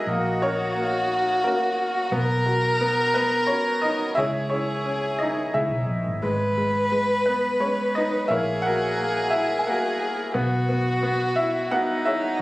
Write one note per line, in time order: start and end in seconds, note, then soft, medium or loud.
0.00 0.38 D#4 medium
0.00 0.38 F#4 medium
0.00 0.10 G#4 medium
0.00 0.38 A#4 medium
0.00 0.43 D#5 loud
0.07 1.40 A#1 medium
0.07 0.74 A#3 medium
0.07 2.14 F#4 loud
0.42 1.41 C#4 medium
0.42 1.42 F#4 medium
0.42 1.41 A#4 medium
0.42 1.40 C#5 loud
0.75 1.43 A#3 medium
1.44 1.92 A#3 medium
1.44 1.92 C#4 soft
1.44 2.10 F#4 medium
1.44 1.92 A#4 medium
2.12 3.44 B1 loud
2.12 2.79 B3 medium
2.12 4.16 A#4 loud
2.46 3.47 F#4 medium
2.81 3.15 B3 medium
3.14 3.47 B3 medium
3.14 3.49 B4 medium
3.47 3.81 C#4 medium
3.47 4.15 F#4 medium
3.47 3.83 C#5 medium
3.82 4.16 D#4 medium
3.82 4.17 D#5 loud
4.15 5.51 C#2 medium
4.15 4.52 C#4 medium
4.15 4.50 E4 medium
4.15 5.85 G#4 loud
4.15 4.50 G#4 medium
4.15 4.48 C#5 medium
4.15 4.51 E5 loud
4.50 4.84 C#4 medium
4.50 5.17 E4 medium
4.50 5.52 G#4 medium
4.50 5.21 C#5 medium
4.85 6.19 C#4 medium
5.19 5.51 D#5 medium
5.23 5.54 D#4 medium
5.54 5.70 C#2 medium
5.54 6.04 E4 medium
5.54 5.55 G#4 medium
5.54 6.04 G#4 medium
5.54 6.02 E5 medium
5.71 5.87 B1 medium
5.89 6.05 A#1 medium
6.07 6.22 G#1 medium
6.22 7.57 G#1 loud
6.22 6.56 G#3 medium
6.22 8.30 B4 loud
6.58 6.90 G#3 medium
6.92 7.59 G#3 medium
7.26 7.59 B3 medium
7.26 7.62 B4 medium
7.60 8.27 G#3 medium
7.60 7.94 C#4 medium
7.60 7.92 C#5 medium
7.95 8.28 D#4 medium
7.95 8.30 D#5 medium
8.28 9.63 A#1 medium
8.28 8.61 A#3 medium
8.28 8.62 E4 medium
8.28 10.36 G#4 loud
8.28 8.62 A#4 medium
8.28 8.62 C#5 medium
8.28 8.64 E5 medium
8.62 8.96 A#3 soft
8.62 9.27 F#5 loud
8.66 9.29 F#4 medium
8.66 9.29 A#4 medium
8.97 9.64 A#3 medium
9.30 9.58 E4 medium
9.30 9.59 E5 medium
9.59 9.66 G#5 medium
9.66 10.32 A#3 medium
9.66 10.15 F#4 medium
9.66 10.15 A#4 medium
9.66 10.14 F#5 medium
10.34 11.67 B1 loud
10.34 10.67 B3 medium
10.34 11.72 F#4 loud
10.69 11.01 B3 medium
11.03 11.70 B3 medium
11.36 11.69 E4 medium
11.36 11.72 E5 medium
11.71 12.38 B3 medium
11.71 12.42 D#4 loud
11.71 12.04 F#4 medium
11.71 12.06 F#5 loud
12.05 12.42 E4 medium
12.05 12.42 G#4 medium
12.05 12.42 C#5 medium
12.05 12.42 E5 loud